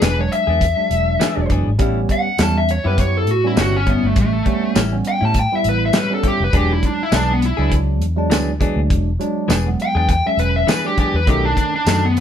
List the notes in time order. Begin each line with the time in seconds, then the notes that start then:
0.01 E1 E3 B3 D4 G#4 B4, snare, closed hi-hat, tambourine
0.17 F#3 G#3 D4 C#5
0.32 E5, closed hi-hat
0.47 E2 B3 D4 G#4
0.61 kick, closed hi-hat
0.76 F#3 G#3 D4
0.91 E1, closed hi-hat
1.20 E3 B3 D4 G#4, snare, closed hi-hat, tambourine
1.36 E1 F#3 G#3 D4
1.49 F#1 E3 B3 D4 G#4, kick, closed hi-hat
1.67 G#1
1.78 A1 A2 G3 B3 C#4 E4, kick, closed hi-hat
2.09 F#5, kick, closed hi-hat
2.38 E2 A2 G3 B3 C#4 E4 A5, snare, closed hi-hat, tambourine
2.57 E5
2.69 C#5, closed hi-hat
2.84 F#2 G3 B3 C#4 E4 G4 B4
2.98 C#5, kick, closed hi-hat
3.17 A4
3.27 A2 F#4, closed hi-hat
3.44 G3 B3 C#4 E4
3.56 G1 A2 G3 C#4 E4, snare, closed hi-hat, tambourine
3.61 F#4
3.76 C#4
3.86 A2 G3 B3 C#4 E4, kick, closed hi-hat
4.03 G1 A3
4.16 A1, kick, closed hi-hat
4.20 A3
4.46 G3 B3 C#4, kick, closed hi-hat
4.75 A1 A2 G3 C#4 E4, snare, closed hi-hat, tambourine
4.92 G3 B3 C#4
5.05 G5, closed hi-hat
5.21 A2 G3 C#4 E4
5.25 A5
5.34 kick, closed hi-hat
5.40 G5
5.52 G3 B3 E4 E5
5.64 A1, closed hi-hat
5.69 B4
5.86 E5
5.93 A2 G3 C#4 E4, snare, closed hi-hat, tambourine
5.98 B4
6.10 G3 B3 C#4
6.15 A4
6.22 A2 G3 C#4 E4, kick, closed hi-hat
6.28 G4
6.40 F1 B4
6.52 E1 E3 F#3 G#3 B3 D4 G#4, kick, closed hi-hat
6.57 G4
6.72 E4
6.83 D4, kick, closed hi-hat
7.03 E4
7.12 B1 E3 F#3 G#3 B3 D4 G#4, snare, closed hi-hat, tambourine
7.16 D4
7.33 B3
7.42 E4, closed hi-hat
7.57 C#2 F#3 G#3 B3 D4 G#4
7.72 kick, closed hi-hat
8.01 E2, closed hi-hat
8.16 F#3 G#3 D4
8.30 D2 E3 B3 D4 G#4, snare, closed hi-hat, tambourine
8.60 E3 F#3 G#3 B3 D4 G#4, kick, closed hi-hat
8.76 D2
8.90 E1, kick, closed hi-hat
9.19 F#3 G#3 D4, closed hi-hat
9.48 E1 E3 B3 D4 G#4, snare, closed hi-hat, tambourine
9.66 F#3 G#3 B3
9.80 G5, closed hi-hat
9.95 E2 B3 D4 G#4 G5
10.09 G5, kick, closed hi-hat
10.26 F#3 G#3 C#4 E5
10.37 E1 B4, closed hi-hat
10.56 E5
10.67 E3 B3 D4 G#4 B4, snare, closed hi-hat, tambourine
10.84 F#3 G#3 D4 G4
10.97 E3 B3 D4 G4 G#4, kick, closed hi-hat
11.14 E2 B4
11.26 B1 B2 D#3 F#3 A3 C#4 D#4 G4, kick, closed hi-hat
11.45 D4
11.57 D4, kick, closed hi-hat
11.76 D4
11.86 F#2 B2 D#3 F#3 A3 C#4 D4 D#4, snare, closed hi-hat, tambourine
12.05 B3
12.17 closed hi-hat